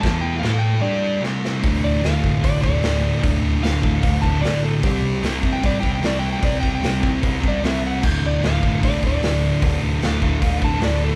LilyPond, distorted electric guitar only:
\new Staff \with { instrumentName = "Distorted electric guitar" } { \clef bass \time 4/4 \key c \lydian \tempo 4 = 150 <e b e'>4 <a e' a'>4 <g d' g'>4 <c g c'>4 | <d, a, d>4 <d, a, d>8 <a, d>8 <d, a, d>8 <a, d>8 <d, a, d>4 | <d, a, d>4 <d, a, d>8 <a, d>8 <d, a, d>8 <a, d>8 <d, a, d>4 | <c g c'>4 <c g c'>8 <g c'>8 <c g c'>8 <g c'>8 <c g c'>4 |
<c g c'>4 <c g c'>8 <g c'>8 <c g c'>8 <g c'>8 <c g c'>4 | <d, a, d>4 <d, a, d>8 <a, d>8 <d, a, d>8 <a, d>8 <d, a, d>4 | <d, a, d>4 <d, a, d>8 <a, d>8 <d, a, d>8 <a, d>8 <d, a, d>4 | }